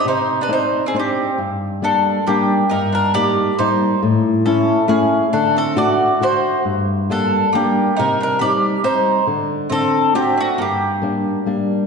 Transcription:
X:1
M:3/4
L:1/16
Q:"Swing" 1/4=137
K:Cm
V:1 name="Mandolin"
c3 =B c3 A G4 | [K:Gm] z4 A4 G4 | B2 B2 d4 c4 | z4 A4 _A4 |
A2 A2 d4 c4 | z4 A4 G4 | B2 B2 d4 c4 | z4 A4 G2 ^F2 |
G8 z4 |]
V:2 name="Mandolin"
E3 D E3 C C4 | [K:Gm] z4 D4 B,4 | E2 D2 G4 E4 | z4 ^C4 C4 |
D2 C2 ^F4 F4 | z4 D4 B,4 | E2 D2 G4 E4 | z4 C4 C2 A,2 |
B,8 z4 |]
V:3 name="Nylon-string guitar"
C,4 [CEd]4 [CDE]4 | [K:Gm] G,,4 [G,B,D]4 [G,B,D]4 | G,,4 [G,B,E]4 [G,B,E]4 | A,,4 [A,^C=E]4 [A,CE]4 |
D,4 [A,D^F]4 [A,DF]4 | G,,4 [G,B,D]4 [G,B,D]4 | C,4 [G,CE]4 [G,CE]4 | D,4 D,4 [CD^F]4 |
G,,4 [G,B,D]4 [G,B,D]4 |]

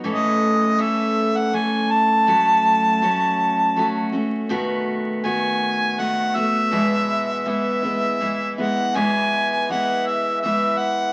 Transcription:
X:1
M:3/4
L:1/16
Q:1/4=81
K:E
V:1 name="Harmonica"
d4 e3 f g2 a2- | a8- a2 z2 | z4 g4 f2 e2- | e4 e6 f2 |
g4 f2 e2 e2 f2 |]
V:2 name="Steel-string acoustic guitar"
[A,,E,A,CA]4 [E,A,CA]4 [E,A,CA]4 | [A,,F,A,CF]4 [F,A,CF]4 [F,A,CF]2 [A,CF]2 | [B,,D,A,B,F]4 [D,A,B,F]4 [D,A,B,F]2 [A,B,F]2 | [E,,B,,E,G,B,E]4 [E,G,B,E]2 [E,G,B,E]2 [E,G,B,E]2 [E,G,B,E]2 |
[E,,B,,E,G,B,E]4 [E,G,B,E]4 [E,G,B,E]4 |]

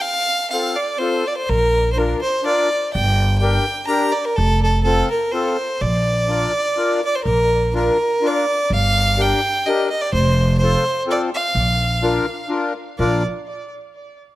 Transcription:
X:1
M:3/4
L:1/16
Q:"Swing" 1/4=125
K:Bb
V:1 name="Fiddle"
f4 f2 d2 c2 d c | B3- B/2 c/2 B2 c2 d4 | g4 g4 b2 d B | A2 A2 A2 B2 c4 |
d8- d2 d c | B4 B4 d4 | f4 g4 e2 e d | c4 c4 d2 f2- |
f8 z4 | d2 z8 z2 |]
V:2 name="Accordion"
z4 [CFA]2 z2 [CFA]2 z2 | z4 [DFB]2 z2 [DFB]2 z2 | z4 [DGB]2 z2 [DGB]2 z2 | z4 [CFA]2 z2 [CFA]2 z2 |
z4 [DFB]2 z2 [DFB]2 z2 | z4 [DFB]2 z2 [DFB]2 z2 | z4 [DGB]2 z2 [DGB]2 z2 | z4 [CFA]2 z2 [CFA]2 z2 |
z4 [DFB]2 z2 [DFB]2 z2 | [DFB]2 z8 z2 |]
V:3 name="Upright bass" clef=bass
z12 | B,,,8 z4 | G,,,8 z4 | F,,,8 z4 |
B,,,8 z4 | B,,,8 z4 | G,,,8 z4 | F,,,8 z4 |
B,,,8 z4 | B,,,2 z8 z2 |]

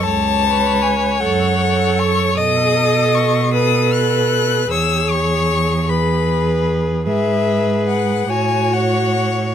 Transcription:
X:1
M:6/8
L:1/8
Q:3/8=51
K:E
V:1 name="Violin"
a2 g f2 c' | d'2 c' d' f'2 | e' c'2 b2 z | e2 f g f2 |]
V:2 name="Violin"
c6 | d3 B3 | c3 B3 | B3 c3 |]
V:3 name="Viola"
z B2 A A2 | A3 A3 | G3 G3 | G3 F3 |]
V:4 name="Cello" clef=bass
C,,3 F,,3 | B,,6 | E,,6 | G,,3 A,,3 |]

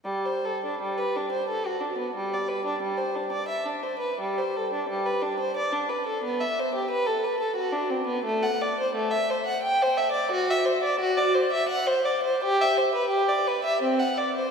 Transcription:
X:1
M:3/4
L:1/16
Q:1/4=88
K:G
V:1 name="Violin"
G, c A D G, B D c A F D B, | G, d B D G, c D d e D c B | G, c A D G, B D c d D B A | B, e c G B A B A F D C B, |
A, f d c A, e c f g c e d | F e c d F d c e f c d c | G e c B G d B e C f d c |]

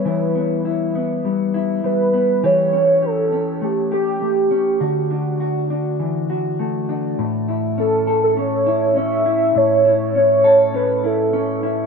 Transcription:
X:1
M:4/4
L:1/16
Q:1/4=101
K:Amix
V:1 name="Soft synth lead"
B4 z8 B4 | c4 A4 G2 G6 | F12 z4 | z4 A3 A c4 e4 |
c4 c4 B2 A4 z2 |]
V:2 name="Clean electric guitar"
[E,G,B,E]2 B,2 E2 B,2 G,2 E2 G,2 B,2 | [E,G]2 C2 G2 C2 A,2 G2 A,2 C2 | [D,F]2 D2 F2 D2 E,2 F2 A,2 D2 | A,,2 E2 C2 A2 C2 E2 C2 E2 |
A,,2 E2 C2 A2 C2 E2 C2 E2 |]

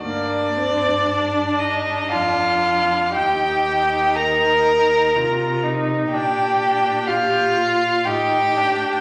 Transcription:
X:1
M:3/4
L:1/8
Q:1/4=61
K:Gm
V:1 name="Violin"
d3 e f2 | g2 b3 z | g2 f2 g2 |]
V:2 name="Violin"
D3 E F2 | G2 B3 z | G2 F2 G2 |]
V:3 name="Viola"
B, C D4 | E4 F E | D2 G F E D |]
V:4 name="Cello" clef=bass
G,,4 F,,2 | E,,4 C,2 | B,,4 A,,2 |]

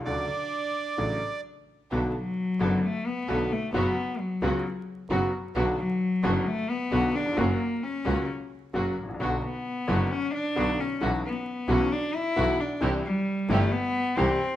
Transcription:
X:1
M:4/4
L:1/16
Q:1/4=132
K:D
V:1 name="Bandoneon"
d12 z4 | [K:Bm] z16 | z16 | z16 |
z16 | z16 | z16 | z16 |]
V:2 name="String section"
z16 | [K:Bm] [B,DA]2 z4 [B,DA]2 z4 [B,DA]2 z2 | [B,CF]2 z4 [B,CF]2 z4 [B,CF]2 z2 | [B,DF]2 z4 [B,DF]2 z4 [B,DF]2 z2 |
[^A,CF]2 z4 [A,CF]2 z4 [A,CF]2 z2 | [B,DF]2 z4 [B,DF]2 z4 [B,DF]2 z2 | [B,EF]2 z4 [B,EF]2 z4 [B,EF]2 z2 | [=CEG]2 z4 [CEG]2 z4 [CEG]2 z2 |]
V:3 name="Cello"
D12 z4 | [K:Bm] z2 F,6 A,2 B,4 A,2 | B,4 F,4 z8 | z2 F,6 A,2 B,4 D2 |
^A,4 C4 z8 | z2 B,6 C2 D4 C2 | z2 B,4 C2 D2 E4 D2 | z2 G,4 A,2 B,4 =C4 |]
V:4 name="Upright piano" clef=bass
[D,,C,D,F,A,D]2 z6 [A,,,A,,C,F,A,D]2 z6 | [K:Bm] [B,,,B,,D,A,B,F]2 z4 [F,,,F,,D,A,B,F]2 z4 [B,,,B,,D,A,B,F]2 z2 | [F,,C,F,B,F]2 z4 [C,,C,F,B,F]2 z4 [F,,C,F,B,F]2 z2 | [B,,,B,,D,F,B,F]2 z4 [F,,,F,,D,F,B,F]2 z4 [B,,,B,,D,F,B,F]2 z/2 ^D,,/2 E,,/2 ^E,,/2 |
[F,,C,F,^A,F]2 z4 [C,,C,F,A,F]2 z4 [F,,C,F,A,F]2 z/2 ^G,,,/2 =A,,,/2 ^A,,,/2 | [B,,,B,,D,F,B,F]2 z4 [F,,,F,,D,F,B,F]2 z4 [B,,,B,,D,F,B,F]2 z2 | [B,,,B,,E,F,B,F]2 z4 [B,,,B,,E,F,B,F]2 z4 [B,,,B,,E,F,B,F]2 z2 | [=C,,=C,E,G,=CG]2 z4 [G,,,G,,E,G,CG]2 z4 [C,,C,E,G,CG]2 z2 |]
V:5 name="Double bass" clef=bass
D,,2 z6 A,,,2 z6 | [K:Bm] B,,,2 z4 F,,,2 z4 B,,,2 z2 | F,,,2 z4 C,,2 z4 F,,,2 z2 | B,,,2 z4 F,,,2 z4 B,,,2 z2 |
F,,,2 z4 C,,2 z4 F,,,2 A,,,2 | B,,,2 z4 F,,,2 z4 B,,,2 z2 | B,,,2 z4 B,,,2 z4 B,,,2 z2 | =C,,2 z4 G,,,2 z4 C,,2 z2 |]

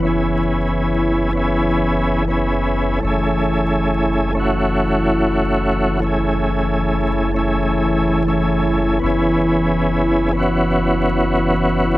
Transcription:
X:1
M:4/4
L:1/16
Q:"Swing 16ths" 1/4=80
K:F#m
V:1 name="Tonewheel organ"
[B,CEG]6- [B,CEG] [B,CEG]4- [B,CEG] [B,CEG]4 | [A,CEG]6- [A,CEG] [A,CEF]8- [A,CEF] | [A,CEG]6- [A,CEG] [A,CEG]4- [A,CEG] [A,CEG]4 | [B,CEG]6- [B,CEG] [B,CEF]8- [B,CEF] |]
V:2 name="Ambient pad"
[E,E]16 | [E,E]16- | [E,E]16- | [E,E]16 |]
V:3 name="Sub bass" clef=bass
F,,,16 | F,,,16- | F,,,16 | F,,,16 |]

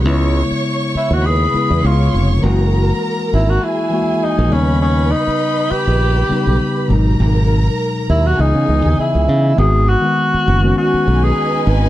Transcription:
X:1
M:4/4
L:1/16
Q:"Swing 16ths" 1/4=101
K:C#dor
V:1 name="Violin section"
[cc']8 [Bb]4 [cc']4 | [Aa]8 [Gg]6 [Bb]2- | [Bb]12- [Bb]2 [Aa]2- | [Aa]8 [Gg]8 |
[K:G#phr] z8 [DBg]8 |]
V:2 name="Tenor saxophone"
z6 E F G4 ^E3 z | z6 E F E4 D2 C2 | C2 D4 =G8 z2 | z6 E F D4 E4 |
[K:G#phr] G2 F6 F3 G3 z2 |]
V:3 name="Tine electric piano" clef=bass
[C,G,B,E]6- [C,G,B,E] z3 [C,G,B,E]2 [C,G,B,E^E]3 z | [E,G,A,F]6- [E,G,A,F] z3 [E,G,A,F]4 [C,=G,B,D]2- | [C,=G,B,D]4- [C,G,B,D] z4 z [C,G,B,D]4 [B,,F,^G,D]2- | [B,,F,G,D]4- [B,,F,G,D] z3 [C,E,B,D]2 [C,E,B,d]4- [C,E,B,d] z |
[K:G#phr] [D,G,B,F]3 [D,G,B,F]3 z [D,G,B,C]6- [D,G,B,C] z2 |]
V:4 name="Fingered electric bass" clef=bass
C,,3 z4 D,,3 z E,, C,,2 ^E,,,2 | F,,,4 z2 G,,,2 z4 z A,,, D,,2- | D,,3 z4 A,,,3 z B,,, z2 G,,,2 | G,,,4 z2 D,,2 C,, C, C,, D,, z C,, C,2 |
[K:G#phr] G,,,3 z3 F,,,2 z2 B,,,2 z2 G,,,2 |]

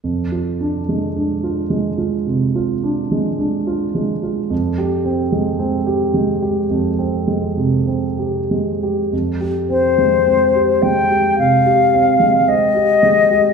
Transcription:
X:1
M:4/4
L:1/16
Q:1/4=54
K:Fdor
V:1 name="Flute"
z16 | z16 | z2 c4 g2 f4 e4 |]
V:2 name="Grand piano"
F,, F D A, D F A, F C, F D A, D F A, F | F,, G C A, C G A, G F,, C A, C, C G A, G | F,, G C A, C G A, G C, G C A, C G A, G |]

